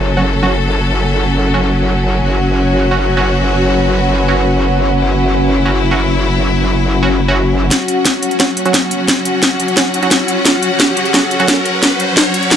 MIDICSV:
0, 0, Header, 1, 7, 480
1, 0, Start_track
1, 0, Key_signature, 3, "minor"
1, 0, Tempo, 342857
1, 1197, Time_signature, 4, 2, 24, 8
1, 17591, End_track
2, 0, Start_track
2, 0, Title_t, "Ambient pad"
2, 0, Program_c, 0, 92
2, 0, Note_on_c, 0, 61, 95
2, 0, Note_on_c, 0, 66, 81
2, 0, Note_on_c, 0, 73, 85
2, 0, Note_on_c, 0, 78, 75
2, 2722, Note_on_c, 0, 71, 85
2, 2867, Note_off_c, 0, 73, 0
2, 11363, Note_on_c, 0, 73, 85
2, 11972, Note_off_c, 0, 71, 0
2, 17591, Note_off_c, 0, 61, 0
2, 17591, Note_off_c, 0, 66, 0
2, 17591, Note_off_c, 0, 73, 0
2, 17591, Note_off_c, 0, 78, 0
2, 17591, End_track
3, 0, Start_track
3, 0, Title_t, "String section"
3, 0, Program_c, 1, 48
3, 0, Note_on_c, 1, 54, 81
3, 0, Note_on_c, 1, 61, 76
3, 0, Note_on_c, 1, 69, 88
3, 3102, Note_off_c, 1, 69, 0
3, 3115, Note_on_c, 1, 66, 91
3, 6941, Note_off_c, 1, 66, 0
3, 6954, Note_on_c, 1, 64, 95
3, 10742, Note_off_c, 1, 54, 0
3, 10742, Note_off_c, 1, 61, 0
3, 10781, Note_off_c, 1, 64, 0
3, 10795, Note_on_c, 1, 54, 83
3, 10795, Note_on_c, 1, 66, 76
3, 10795, Note_on_c, 1, 78, 88
3, 10796, Note_on_c, 1, 61, 78
3, 17591, Note_off_c, 1, 54, 0
3, 17591, Note_off_c, 1, 61, 0
3, 17591, Note_off_c, 1, 66, 0
3, 17591, Note_off_c, 1, 78, 0
3, 17591, End_track
4, 0, Start_track
4, 0, Title_t, "Synth stab"
4, 0, Program_c, 2, 62
4, 236, Note_on_c, 2, 54, 75
4, 236, Note_on_c, 2, 61, 72
4, 237, Note_on_c, 2, 66, 84
4, 311, Note_off_c, 2, 54, 0
4, 311, Note_off_c, 2, 61, 0
4, 311, Note_off_c, 2, 66, 0
4, 597, Note_on_c, 2, 54, 88
4, 597, Note_on_c, 2, 61, 80
4, 597, Note_on_c, 2, 66, 98
4, 715, Note_off_c, 2, 61, 0
4, 715, Note_off_c, 2, 66, 0
4, 716, Note_off_c, 2, 54, 0
4, 2157, Note_on_c, 2, 54, 75
4, 2157, Note_on_c, 2, 61, 67
4, 2157, Note_on_c, 2, 66, 85
4, 2231, Note_off_c, 2, 54, 0
4, 2231, Note_off_c, 2, 61, 0
4, 2231, Note_off_c, 2, 66, 0
4, 4076, Note_on_c, 2, 54, 75
4, 4076, Note_on_c, 2, 61, 73
4, 4076, Note_on_c, 2, 66, 83
4, 4150, Note_off_c, 2, 54, 0
4, 4150, Note_off_c, 2, 61, 0
4, 4150, Note_off_c, 2, 66, 0
4, 4436, Note_on_c, 2, 54, 89
4, 4436, Note_on_c, 2, 61, 83
4, 4436, Note_on_c, 2, 66, 95
4, 4555, Note_off_c, 2, 54, 0
4, 4555, Note_off_c, 2, 61, 0
4, 4555, Note_off_c, 2, 66, 0
4, 5996, Note_on_c, 2, 66, 84
4, 5997, Note_on_c, 2, 54, 75
4, 5997, Note_on_c, 2, 61, 70
4, 6071, Note_off_c, 2, 54, 0
4, 6071, Note_off_c, 2, 61, 0
4, 6071, Note_off_c, 2, 66, 0
4, 7916, Note_on_c, 2, 54, 75
4, 7916, Note_on_c, 2, 66, 83
4, 7917, Note_on_c, 2, 61, 67
4, 7991, Note_off_c, 2, 54, 0
4, 7991, Note_off_c, 2, 61, 0
4, 7991, Note_off_c, 2, 66, 0
4, 8276, Note_on_c, 2, 61, 81
4, 8277, Note_on_c, 2, 54, 90
4, 8277, Note_on_c, 2, 66, 95
4, 8395, Note_off_c, 2, 54, 0
4, 8395, Note_off_c, 2, 61, 0
4, 8395, Note_off_c, 2, 66, 0
4, 9837, Note_on_c, 2, 54, 77
4, 9837, Note_on_c, 2, 61, 72
4, 9837, Note_on_c, 2, 66, 86
4, 9911, Note_off_c, 2, 54, 0
4, 9911, Note_off_c, 2, 61, 0
4, 9911, Note_off_c, 2, 66, 0
4, 10197, Note_on_c, 2, 54, 88
4, 10197, Note_on_c, 2, 61, 85
4, 10197, Note_on_c, 2, 66, 97
4, 10315, Note_off_c, 2, 54, 0
4, 10315, Note_off_c, 2, 61, 0
4, 10315, Note_off_c, 2, 66, 0
4, 11757, Note_on_c, 2, 54, 80
4, 11757, Note_on_c, 2, 61, 69
4, 11757, Note_on_c, 2, 66, 88
4, 11831, Note_off_c, 2, 54, 0
4, 11831, Note_off_c, 2, 61, 0
4, 11831, Note_off_c, 2, 66, 0
4, 12116, Note_on_c, 2, 61, 81
4, 12116, Note_on_c, 2, 66, 104
4, 12117, Note_on_c, 2, 54, 92
4, 12235, Note_off_c, 2, 54, 0
4, 12235, Note_off_c, 2, 61, 0
4, 12235, Note_off_c, 2, 66, 0
4, 13676, Note_on_c, 2, 54, 79
4, 13676, Note_on_c, 2, 61, 72
4, 13676, Note_on_c, 2, 66, 86
4, 13751, Note_off_c, 2, 54, 0
4, 13751, Note_off_c, 2, 61, 0
4, 13751, Note_off_c, 2, 66, 0
4, 14036, Note_on_c, 2, 54, 86
4, 14036, Note_on_c, 2, 61, 84
4, 14036, Note_on_c, 2, 66, 105
4, 14155, Note_off_c, 2, 54, 0
4, 14155, Note_off_c, 2, 61, 0
4, 14155, Note_off_c, 2, 66, 0
4, 15596, Note_on_c, 2, 54, 78
4, 15596, Note_on_c, 2, 61, 72
4, 15596, Note_on_c, 2, 66, 91
4, 15670, Note_off_c, 2, 61, 0
4, 15671, Note_off_c, 2, 54, 0
4, 15671, Note_off_c, 2, 66, 0
4, 15956, Note_on_c, 2, 54, 90
4, 15956, Note_on_c, 2, 61, 81
4, 15956, Note_on_c, 2, 66, 98
4, 16075, Note_off_c, 2, 54, 0
4, 16075, Note_off_c, 2, 61, 0
4, 16075, Note_off_c, 2, 66, 0
4, 17516, Note_on_c, 2, 54, 80
4, 17516, Note_on_c, 2, 61, 69
4, 17516, Note_on_c, 2, 66, 83
4, 17590, Note_off_c, 2, 54, 0
4, 17590, Note_off_c, 2, 61, 0
4, 17590, Note_off_c, 2, 66, 0
4, 17591, End_track
5, 0, Start_track
5, 0, Title_t, "Wobble bass"
5, 0, Program_c, 3, 39
5, 0, Note_on_c, 3, 30, 86
5, 3093, Note_off_c, 3, 30, 0
5, 3116, Note_on_c, 3, 30, 86
5, 10772, Note_off_c, 3, 30, 0
5, 17591, End_track
6, 0, Start_track
6, 0, Title_t, "Riser"
6, 0, Program_c, 4, 103
6, 10797, Note_on_c, 4, 60, 78
6, 17591, Note_off_c, 4, 60, 0
6, 17591, End_track
7, 0, Start_track
7, 0, Title_t, "Drums"
7, 10796, Note_on_c, 9, 36, 95
7, 10796, Note_on_c, 9, 38, 47
7, 10796, Note_on_c, 9, 42, 96
7, 10936, Note_off_c, 9, 36, 0
7, 10936, Note_off_c, 9, 38, 0
7, 10936, Note_off_c, 9, 42, 0
7, 11037, Note_on_c, 9, 42, 69
7, 11177, Note_off_c, 9, 42, 0
7, 11276, Note_on_c, 9, 36, 99
7, 11276, Note_on_c, 9, 38, 48
7, 11276, Note_on_c, 9, 42, 97
7, 11416, Note_off_c, 9, 36, 0
7, 11416, Note_off_c, 9, 38, 0
7, 11416, Note_off_c, 9, 42, 0
7, 11516, Note_on_c, 9, 42, 70
7, 11637, Note_off_c, 9, 42, 0
7, 11637, Note_on_c, 9, 42, 39
7, 11756, Note_off_c, 9, 42, 0
7, 11756, Note_on_c, 9, 36, 96
7, 11756, Note_on_c, 9, 38, 50
7, 11756, Note_on_c, 9, 42, 96
7, 11896, Note_off_c, 9, 36, 0
7, 11896, Note_off_c, 9, 38, 0
7, 11896, Note_off_c, 9, 42, 0
7, 11996, Note_on_c, 9, 42, 69
7, 12116, Note_off_c, 9, 42, 0
7, 12116, Note_on_c, 9, 42, 38
7, 12236, Note_off_c, 9, 42, 0
7, 12236, Note_on_c, 9, 36, 93
7, 12236, Note_on_c, 9, 38, 50
7, 12236, Note_on_c, 9, 42, 95
7, 12376, Note_off_c, 9, 36, 0
7, 12376, Note_off_c, 9, 38, 0
7, 12376, Note_off_c, 9, 42, 0
7, 12476, Note_on_c, 9, 42, 68
7, 12616, Note_off_c, 9, 42, 0
7, 12716, Note_on_c, 9, 36, 97
7, 12716, Note_on_c, 9, 38, 51
7, 12716, Note_on_c, 9, 42, 90
7, 12856, Note_off_c, 9, 36, 0
7, 12856, Note_off_c, 9, 38, 0
7, 12856, Note_off_c, 9, 42, 0
7, 12955, Note_on_c, 9, 42, 71
7, 13095, Note_off_c, 9, 42, 0
7, 13195, Note_on_c, 9, 38, 55
7, 13195, Note_on_c, 9, 42, 96
7, 13196, Note_on_c, 9, 36, 102
7, 13335, Note_off_c, 9, 38, 0
7, 13335, Note_off_c, 9, 42, 0
7, 13336, Note_off_c, 9, 36, 0
7, 13435, Note_on_c, 9, 42, 65
7, 13555, Note_off_c, 9, 42, 0
7, 13555, Note_on_c, 9, 42, 34
7, 13675, Note_off_c, 9, 42, 0
7, 13675, Note_on_c, 9, 38, 55
7, 13675, Note_on_c, 9, 42, 95
7, 13676, Note_on_c, 9, 36, 92
7, 13815, Note_off_c, 9, 38, 0
7, 13815, Note_off_c, 9, 42, 0
7, 13816, Note_off_c, 9, 36, 0
7, 13916, Note_on_c, 9, 42, 63
7, 14035, Note_off_c, 9, 42, 0
7, 14035, Note_on_c, 9, 42, 37
7, 14155, Note_off_c, 9, 42, 0
7, 14155, Note_on_c, 9, 38, 54
7, 14155, Note_on_c, 9, 42, 95
7, 14156, Note_on_c, 9, 36, 99
7, 14295, Note_off_c, 9, 38, 0
7, 14295, Note_off_c, 9, 42, 0
7, 14296, Note_off_c, 9, 36, 0
7, 14396, Note_on_c, 9, 42, 66
7, 14536, Note_off_c, 9, 42, 0
7, 14636, Note_on_c, 9, 36, 93
7, 14636, Note_on_c, 9, 38, 59
7, 14636, Note_on_c, 9, 42, 88
7, 14776, Note_off_c, 9, 36, 0
7, 14776, Note_off_c, 9, 38, 0
7, 14776, Note_off_c, 9, 42, 0
7, 14876, Note_on_c, 9, 42, 69
7, 15016, Note_off_c, 9, 42, 0
7, 15115, Note_on_c, 9, 38, 65
7, 15115, Note_on_c, 9, 42, 92
7, 15116, Note_on_c, 9, 36, 104
7, 15255, Note_off_c, 9, 38, 0
7, 15255, Note_off_c, 9, 42, 0
7, 15256, Note_off_c, 9, 36, 0
7, 15356, Note_on_c, 9, 42, 64
7, 15476, Note_off_c, 9, 42, 0
7, 15476, Note_on_c, 9, 42, 34
7, 15596, Note_off_c, 9, 42, 0
7, 15596, Note_on_c, 9, 36, 98
7, 15596, Note_on_c, 9, 38, 64
7, 15596, Note_on_c, 9, 42, 90
7, 15736, Note_off_c, 9, 36, 0
7, 15736, Note_off_c, 9, 38, 0
7, 15736, Note_off_c, 9, 42, 0
7, 15836, Note_on_c, 9, 42, 65
7, 15956, Note_off_c, 9, 42, 0
7, 15956, Note_on_c, 9, 42, 35
7, 16076, Note_off_c, 9, 42, 0
7, 16076, Note_on_c, 9, 36, 97
7, 16076, Note_on_c, 9, 38, 61
7, 16076, Note_on_c, 9, 42, 84
7, 16216, Note_off_c, 9, 36, 0
7, 16216, Note_off_c, 9, 38, 0
7, 16216, Note_off_c, 9, 42, 0
7, 16317, Note_on_c, 9, 42, 66
7, 16457, Note_off_c, 9, 42, 0
7, 16556, Note_on_c, 9, 36, 97
7, 16556, Note_on_c, 9, 38, 66
7, 16556, Note_on_c, 9, 42, 84
7, 16696, Note_off_c, 9, 36, 0
7, 16696, Note_off_c, 9, 38, 0
7, 16696, Note_off_c, 9, 42, 0
7, 16796, Note_on_c, 9, 42, 64
7, 16936, Note_off_c, 9, 42, 0
7, 17035, Note_on_c, 9, 38, 70
7, 17035, Note_on_c, 9, 42, 85
7, 17036, Note_on_c, 9, 36, 105
7, 17175, Note_off_c, 9, 38, 0
7, 17175, Note_off_c, 9, 42, 0
7, 17176, Note_off_c, 9, 36, 0
7, 17276, Note_on_c, 9, 42, 62
7, 17396, Note_off_c, 9, 42, 0
7, 17396, Note_on_c, 9, 42, 33
7, 17516, Note_on_c, 9, 36, 100
7, 17517, Note_off_c, 9, 42, 0
7, 17517, Note_on_c, 9, 38, 69
7, 17517, Note_on_c, 9, 42, 85
7, 17591, Note_off_c, 9, 36, 0
7, 17591, Note_off_c, 9, 38, 0
7, 17591, Note_off_c, 9, 42, 0
7, 17591, End_track
0, 0, End_of_file